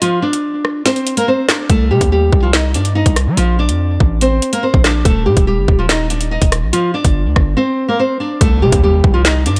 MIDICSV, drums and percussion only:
0, 0, Header, 1, 2, 480
1, 0, Start_track
1, 0, Tempo, 419580
1, 21, Time_signature, 4, 2, 24, 8
1, 10981, End_track
2, 0, Start_track
2, 0, Title_t, "Drums"
2, 20, Note_on_c, 9, 42, 86
2, 134, Note_off_c, 9, 42, 0
2, 380, Note_on_c, 9, 42, 71
2, 494, Note_off_c, 9, 42, 0
2, 740, Note_on_c, 9, 37, 86
2, 854, Note_off_c, 9, 37, 0
2, 979, Note_on_c, 9, 38, 66
2, 980, Note_on_c, 9, 42, 75
2, 1093, Note_off_c, 9, 38, 0
2, 1094, Note_off_c, 9, 42, 0
2, 1099, Note_on_c, 9, 42, 43
2, 1214, Note_off_c, 9, 42, 0
2, 1220, Note_on_c, 9, 42, 77
2, 1334, Note_off_c, 9, 42, 0
2, 1340, Note_on_c, 9, 42, 72
2, 1454, Note_off_c, 9, 42, 0
2, 1700, Note_on_c, 9, 37, 94
2, 1700, Note_on_c, 9, 38, 117
2, 1700, Note_on_c, 9, 42, 79
2, 1713, Note_on_c, 9, 39, 91
2, 1814, Note_off_c, 9, 37, 0
2, 1814, Note_off_c, 9, 38, 0
2, 1814, Note_off_c, 9, 42, 0
2, 1827, Note_off_c, 9, 39, 0
2, 1940, Note_on_c, 9, 36, 112
2, 1940, Note_on_c, 9, 42, 84
2, 2054, Note_off_c, 9, 36, 0
2, 2054, Note_off_c, 9, 42, 0
2, 2299, Note_on_c, 9, 42, 71
2, 2300, Note_on_c, 9, 36, 95
2, 2414, Note_off_c, 9, 36, 0
2, 2414, Note_off_c, 9, 42, 0
2, 2660, Note_on_c, 9, 36, 97
2, 2774, Note_off_c, 9, 36, 0
2, 2898, Note_on_c, 9, 38, 110
2, 2899, Note_on_c, 9, 42, 81
2, 2911, Note_on_c, 9, 39, 89
2, 3013, Note_off_c, 9, 38, 0
2, 3013, Note_off_c, 9, 42, 0
2, 3026, Note_off_c, 9, 39, 0
2, 3139, Note_on_c, 9, 42, 73
2, 3254, Note_off_c, 9, 42, 0
2, 3260, Note_on_c, 9, 42, 71
2, 3374, Note_off_c, 9, 42, 0
2, 3499, Note_on_c, 9, 42, 80
2, 3500, Note_on_c, 9, 36, 93
2, 3613, Note_off_c, 9, 42, 0
2, 3614, Note_off_c, 9, 36, 0
2, 3619, Note_on_c, 9, 37, 96
2, 3619, Note_on_c, 9, 42, 80
2, 3734, Note_off_c, 9, 37, 0
2, 3734, Note_off_c, 9, 42, 0
2, 3859, Note_on_c, 9, 42, 86
2, 3973, Note_off_c, 9, 42, 0
2, 4219, Note_on_c, 9, 42, 71
2, 4333, Note_off_c, 9, 42, 0
2, 4580, Note_on_c, 9, 36, 96
2, 4694, Note_off_c, 9, 36, 0
2, 4820, Note_on_c, 9, 42, 73
2, 4934, Note_off_c, 9, 42, 0
2, 5060, Note_on_c, 9, 42, 80
2, 5174, Note_off_c, 9, 42, 0
2, 5180, Note_on_c, 9, 42, 74
2, 5294, Note_off_c, 9, 42, 0
2, 5420, Note_on_c, 9, 36, 94
2, 5535, Note_off_c, 9, 36, 0
2, 5540, Note_on_c, 9, 37, 94
2, 5540, Note_on_c, 9, 38, 113
2, 5540, Note_on_c, 9, 42, 79
2, 5553, Note_on_c, 9, 39, 88
2, 5654, Note_off_c, 9, 37, 0
2, 5654, Note_off_c, 9, 38, 0
2, 5654, Note_off_c, 9, 42, 0
2, 5667, Note_off_c, 9, 39, 0
2, 5780, Note_on_c, 9, 36, 109
2, 5780, Note_on_c, 9, 42, 81
2, 5894, Note_off_c, 9, 42, 0
2, 5895, Note_off_c, 9, 36, 0
2, 6140, Note_on_c, 9, 36, 96
2, 6140, Note_on_c, 9, 42, 69
2, 6254, Note_off_c, 9, 42, 0
2, 6255, Note_off_c, 9, 36, 0
2, 6501, Note_on_c, 9, 36, 96
2, 6615, Note_off_c, 9, 36, 0
2, 6740, Note_on_c, 9, 38, 113
2, 6740, Note_on_c, 9, 42, 81
2, 6753, Note_on_c, 9, 39, 88
2, 6854, Note_off_c, 9, 38, 0
2, 6855, Note_off_c, 9, 42, 0
2, 6867, Note_off_c, 9, 39, 0
2, 6980, Note_on_c, 9, 42, 72
2, 7095, Note_off_c, 9, 42, 0
2, 7100, Note_on_c, 9, 42, 72
2, 7214, Note_off_c, 9, 42, 0
2, 7340, Note_on_c, 9, 36, 90
2, 7340, Note_on_c, 9, 42, 76
2, 7454, Note_off_c, 9, 42, 0
2, 7455, Note_off_c, 9, 36, 0
2, 7460, Note_on_c, 9, 37, 96
2, 7460, Note_on_c, 9, 42, 82
2, 7575, Note_off_c, 9, 37, 0
2, 7575, Note_off_c, 9, 42, 0
2, 7700, Note_on_c, 9, 42, 84
2, 7815, Note_off_c, 9, 42, 0
2, 8060, Note_on_c, 9, 36, 90
2, 8060, Note_on_c, 9, 42, 70
2, 8175, Note_off_c, 9, 36, 0
2, 8175, Note_off_c, 9, 42, 0
2, 8420, Note_on_c, 9, 37, 87
2, 8421, Note_on_c, 9, 36, 96
2, 8535, Note_off_c, 9, 36, 0
2, 8535, Note_off_c, 9, 37, 0
2, 9621, Note_on_c, 9, 36, 116
2, 9621, Note_on_c, 9, 42, 86
2, 9735, Note_off_c, 9, 36, 0
2, 9735, Note_off_c, 9, 42, 0
2, 9981, Note_on_c, 9, 36, 96
2, 9981, Note_on_c, 9, 42, 71
2, 10095, Note_off_c, 9, 36, 0
2, 10095, Note_off_c, 9, 42, 0
2, 10341, Note_on_c, 9, 36, 96
2, 10456, Note_off_c, 9, 36, 0
2, 10580, Note_on_c, 9, 38, 115
2, 10580, Note_on_c, 9, 42, 83
2, 10593, Note_on_c, 9, 39, 88
2, 10694, Note_off_c, 9, 38, 0
2, 10695, Note_off_c, 9, 42, 0
2, 10707, Note_off_c, 9, 39, 0
2, 10821, Note_on_c, 9, 42, 73
2, 10935, Note_off_c, 9, 42, 0
2, 10941, Note_on_c, 9, 42, 72
2, 10981, Note_off_c, 9, 42, 0
2, 10981, End_track
0, 0, End_of_file